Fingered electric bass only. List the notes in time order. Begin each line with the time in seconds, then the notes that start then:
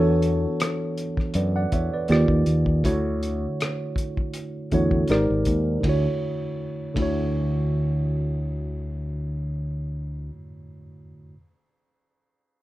Already playing: E2
1.35 F#2
1.73 E2
2.10 D#2
2.29 D#2
2.47 D#2
2.85 D2
4.73 E2
5.09 G#1
5.30 G#1
5.47 D#2
5.84 D2
6.96 D2